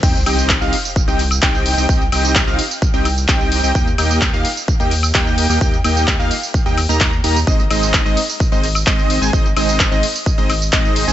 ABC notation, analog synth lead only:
X:1
M:4/4
L:1/16
Q:1/4=129
K:Cm
V:1 name="Analog synth lead"
g z g3 f z3 g z2 g3 g | g z g3 f z3 g z2 g3 g | g z g3 f z3 g z2 g3 g | g z g3 f z3 g z b2 z b z |
e z e3 e z3 e z2 e3 a | e z e3 e z3 e z2 e3 a |]